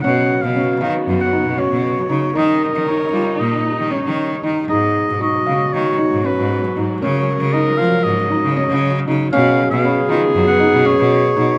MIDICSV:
0, 0, Header, 1, 7, 480
1, 0, Start_track
1, 0, Tempo, 517241
1, 39, Time_signature, 9, 3, 24, 8
1, 6279, Tempo, 511509
1, 10798, End_track
2, 0, Start_track
2, 0, Title_t, "Celesta"
2, 0, Program_c, 0, 8
2, 4349, Note_on_c, 0, 82, 51
2, 4842, Note_on_c, 0, 85, 74
2, 6069, Note_off_c, 0, 82, 0
2, 6554, Note_off_c, 0, 85, 0
2, 8685, Note_on_c, 0, 80, 70
2, 9173, Note_on_c, 0, 83, 62
2, 10391, Note_off_c, 0, 80, 0
2, 10798, Note_off_c, 0, 83, 0
2, 10798, End_track
3, 0, Start_track
3, 0, Title_t, "Oboe"
3, 0, Program_c, 1, 68
3, 16, Note_on_c, 1, 78, 110
3, 386, Note_on_c, 1, 77, 100
3, 400, Note_off_c, 1, 78, 0
3, 866, Note_off_c, 1, 77, 0
3, 1120, Note_on_c, 1, 78, 91
3, 1481, Note_on_c, 1, 73, 88
3, 1495, Note_off_c, 1, 78, 0
3, 2202, Note_on_c, 1, 75, 97
3, 2216, Note_off_c, 1, 73, 0
3, 2433, Note_off_c, 1, 75, 0
3, 2448, Note_on_c, 1, 75, 93
3, 2660, Note_off_c, 1, 75, 0
3, 2671, Note_on_c, 1, 73, 84
3, 3146, Note_on_c, 1, 75, 92
3, 3160, Note_off_c, 1, 73, 0
3, 3638, Note_on_c, 1, 73, 76
3, 3651, Note_off_c, 1, 75, 0
3, 4120, Note_off_c, 1, 73, 0
3, 4356, Note_on_c, 1, 75, 106
3, 4806, Note_off_c, 1, 75, 0
3, 4848, Note_on_c, 1, 75, 101
3, 5318, Note_on_c, 1, 73, 104
3, 5332, Note_off_c, 1, 75, 0
3, 5806, Note_on_c, 1, 71, 86
3, 5819, Note_off_c, 1, 73, 0
3, 6282, Note_off_c, 1, 71, 0
3, 6522, Note_on_c, 1, 73, 96
3, 6995, Note_on_c, 1, 75, 102
3, 7009, Note_off_c, 1, 73, 0
3, 7223, Note_on_c, 1, 77, 105
3, 7237, Note_off_c, 1, 75, 0
3, 7467, Note_on_c, 1, 75, 103
3, 7481, Note_off_c, 1, 77, 0
3, 7951, Note_off_c, 1, 75, 0
3, 7957, Note_on_c, 1, 75, 90
3, 8406, Note_off_c, 1, 75, 0
3, 8682, Note_on_c, 1, 77, 125
3, 9015, Note_off_c, 1, 77, 0
3, 9035, Note_on_c, 1, 77, 103
3, 9482, Note_off_c, 1, 77, 0
3, 9757, Note_on_c, 1, 78, 111
3, 10124, Note_on_c, 1, 73, 115
3, 10138, Note_off_c, 1, 78, 0
3, 10798, Note_off_c, 1, 73, 0
3, 10798, End_track
4, 0, Start_track
4, 0, Title_t, "Clarinet"
4, 0, Program_c, 2, 71
4, 39, Note_on_c, 2, 66, 96
4, 2149, Note_off_c, 2, 66, 0
4, 2174, Note_on_c, 2, 70, 124
4, 4072, Note_off_c, 2, 70, 0
4, 4357, Note_on_c, 2, 68, 88
4, 4829, Note_on_c, 2, 66, 94
4, 4843, Note_off_c, 2, 68, 0
4, 6505, Note_off_c, 2, 66, 0
4, 6510, Note_on_c, 2, 70, 125
4, 8390, Note_off_c, 2, 70, 0
4, 8685, Note_on_c, 2, 68, 127
4, 10798, Note_off_c, 2, 68, 0
4, 10798, End_track
5, 0, Start_track
5, 0, Title_t, "Felt piano"
5, 0, Program_c, 3, 0
5, 36, Note_on_c, 3, 61, 103
5, 362, Note_off_c, 3, 61, 0
5, 515, Note_on_c, 3, 61, 78
5, 677, Note_off_c, 3, 61, 0
5, 750, Note_on_c, 3, 77, 79
5, 1077, Note_off_c, 3, 77, 0
5, 1232, Note_on_c, 3, 63, 72
5, 1394, Note_off_c, 3, 63, 0
5, 1466, Note_on_c, 3, 61, 87
5, 1794, Note_off_c, 3, 61, 0
5, 1941, Note_on_c, 3, 63, 75
5, 2107, Note_off_c, 3, 63, 0
5, 2183, Note_on_c, 3, 63, 95
5, 2511, Note_off_c, 3, 63, 0
5, 2662, Note_on_c, 3, 63, 78
5, 2827, Note_off_c, 3, 63, 0
5, 2907, Note_on_c, 3, 65, 78
5, 3236, Note_off_c, 3, 65, 0
5, 3388, Note_on_c, 3, 63, 70
5, 3553, Note_off_c, 3, 63, 0
5, 3624, Note_on_c, 3, 61, 80
5, 3959, Note_off_c, 3, 61, 0
5, 4113, Note_on_c, 3, 63, 75
5, 4280, Note_off_c, 3, 63, 0
5, 4355, Note_on_c, 3, 63, 91
5, 4686, Note_off_c, 3, 63, 0
5, 4832, Note_on_c, 3, 63, 74
5, 4999, Note_off_c, 3, 63, 0
5, 5069, Note_on_c, 3, 77, 72
5, 5403, Note_off_c, 3, 77, 0
5, 5551, Note_on_c, 3, 63, 76
5, 5719, Note_off_c, 3, 63, 0
5, 5792, Note_on_c, 3, 61, 84
5, 6123, Note_off_c, 3, 61, 0
5, 6278, Note_on_c, 3, 63, 78
5, 6444, Note_off_c, 3, 63, 0
5, 6519, Note_on_c, 3, 61, 93
5, 6850, Note_off_c, 3, 61, 0
5, 7002, Note_on_c, 3, 63, 87
5, 7167, Note_off_c, 3, 63, 0
5, 7240, Note_on_c, 3, 65, 79
5, 7570, Note_off_c, 3, 65, 0
5, 7719, Note_on_c, 3, 63, 73
5, 7885, Note_off_c, 3, 63, 0
5, 7965, Note_on_c, 3, 61, 91
5, 8293, Note_off_c, 3, 61, 0
5, 8445, Note_on_c, 3, 63, 83
5, 8608, Note_off_c, 3, 63, 0
5, 8681, Note_on_c, 3, 61, 113
5, 9008, Note_off_c, 3, 61, 0
5, 9164, Note_on_c, 3, 61, 88
5, 9326, Note_off_c, 3, 61, 0
5, 9398, Note_on_c, 3, 65, 89
5, 9726, Note_off_c, 3, 65, 0
5, 9874, Note_on_c, 3, 63, 87
5, 10040, Note_off_c, 3, 63, 0
5, 10110, Note_on_c, 3, 61, 106
5, 10441, Note_off_c, 3, 61, 0
5, 10595, Note_on_c, 3, 63, 75
5, 10760, Note_off_c, 3, 63, 0
5, 10798, End_track
6, 0, Start_track
6, 0, Title_t, "String section"
6, 0, Program_c, 4, 48
6, 0, Note_on_c, 4, 49, 76
6, 0, Note_on_c, 4, 54, 71
6, 43, Note_on_c, 4, 59, 69
6, 2145, Note_off_c, 4, 54, 0
6, 2166, Note_off_c, 4, 59, 0
6, 2179, Note_on_c, 4, 55, 69
6, 2182, Note_on_c, 4, 63, 91
6, 4322, Note_off_c, 4, 49, 0
6, 4333, Note_off_c, 4, 55, 0
6, 4334, Note_off_c, 4, 63, 0
6, 4347, Note_on_c, 4, 56, 64
6, 4348, Note_on_c, 4, 47, 73
6, 4350, Note_on_c, 4, 54, 84
6, 6494, Note_off_c, 4, 47, 0
6, 6524, Note_on_c, 4, 49, 79
6, 8639, Note_off_c, 4, 56, 0
6, 8660, Note_off_c, 4, 49, 0
6, 8671, Note_on_c, 4, 49, 82
6, 8674, Note_on_c, 4, 59, 77
6, 10797, Note_off_c, 4, 54, 0
6, 10798, Note_off_c, 4, 49, 0
6, 10798, Note_off_c, 4, 59, 0
6, 10798, End_track
7, 0, Start_track
7, 0, Title_t, "Cello"
7, 0, Program_c, 5, 42
7, 42, Note_on_c, 5, 47, 97
7, 316, Note_off_c, 5, 47, 0
7, 397, Note_on_c, 5, 47, 92
7, 671, Note_off_c, 5, 47, 0
7, 751, Note_on_c, 5, 51, 95
7, 843, Note_off_c, 5, 51, 0
7, 992, Note_on_c, 5, 42, 96
7, 1175, Note_off_c, 5, 42, 0
7, 1346, Note_on_c, 5, 47, 80
7, 1530, Note_off_c, 5, 47, 0
7, 1584, Note_on_c, 5, 47, 90
7, 1862, Note_off_c, 5, 47, 0
7, 1944, Note_on_c, 5, 49, 83
7, 2130, Note_off_c, 5, 49, 0
7, 2186, Note_on_c, 5, 51, 94
7, 2462, Note_off_c, 5, 51, 0
7, 2549, Note_on_c, 5, 51, 79
7, 2824, Note_off_c, 5, 51, 0
7, 2902, Note_on_c, 5, 55, 85
7, 2996, Note_off_c, 5, 55, 0
7, 3154, Note_on_c, 5, 46, 92
7, 3336, Note_off_c, 5, 46, 0
7, 3515, Note_on_c, 5, 51, 71
7, 3698, Note_off_c, 5, 51, 0
7, 3758, Note_on_c, 5, 51, 93
7, 4037, Note_off_c, 5, 51, 0
7, 4122, Note_on_c, 5, 51, 77
7, 4306, Note_off_c, 5, 51, 0
7, 4365, Note_on_c, 5, 44, 94
7, 4641, Note_off_c, 5, 44, 0
7, 4721, Note_on_c, 5, 44, 80
7, 4998, Note_off_c, 5, 44, 0
7, 5079, Note_on_c, 5, 49, 88
7, 5172, Note_off_c, 5, 49, 0
7, 5323, Note_on_c, 5, 51, 87
7, 5508, Note_off_c, 5, 51, 0
7, 5680, Note_on_c, 5, 44, 83
7, 5865, Note_off_c, 5, 44, 0
7, 5920, Note_on_c, 5, 44, 91
7, 6197, Note_off_c, 5, 44, 0
7, 6274, Note_on_c, 5, 44, 82
7, 6462, Note_off_c, 5, 44, 0
7, 6521, Note_on_c, 5, 49, 98
7, 6799, Note_off_c, 5, 49, 0
7, 6877, Note_on_c, 5, 49, 90
7, 7158, Note_off_c, 5, 49, 0
7, 7244, Note_on_c, 5, 53, 91
7, 7336, Note_off_c, 5, 53, 0
7, 7482, Note_on_c, 5, 44, 86
7, 7668, Note_off_c, 5, 44, 0
7, 7847, Note_on_c, 5, 49, 95
7, 8030, Note_off_c, 5, 49, 0
7, 8088, Note_on_c, 5, 49, 104
7, 8364, Note_off_c, 5, 49, 0
7, 8448, Note_on_c, 5, 49, 94
7, 8631, Note_off_c, 5, 49, 0
7, 8687, Note_on_c, 5, 47, 112
7, 8961, Note_off_c, 5, 47, 0
7, 9040, Note_on_c, 5, 47, 96
7, 9316, Note_off_c, 5, 47, 0
7, 9397, Note_on_c, 5, 51, 97
7, 9490, Note_off_c, 5, 51, 0
7, 9639, Note_on_c, 5, 42, 103
7, 9824, Note_off_c, 5, 42, 0
7, 9999, Note_on_c, 5, 47, 91
7, 10183, Note_off_c, 5, 47, 0
7, 10241, Note_on_c, 5, 47, 104
7, 10517, Note_off_c, 5, 47, 0
7, 10603, Note_on_c, 5, 47, 96
7, 10786, Note_off_c, 5, 47, 0
7, 10798, End_track
0, 0, End_of_file